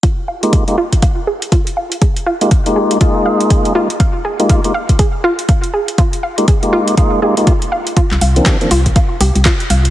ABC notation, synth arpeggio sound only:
X:1
M:4/4
L:1/8
Q:"Swing 16ths" 1/4=121
K:Fdor
V:1 name="Synth arpeggio sound"
F f A F f A F f | A F f A F f A F | f A F f A F f A | F f A F f A F f |
F f G F f G F f |]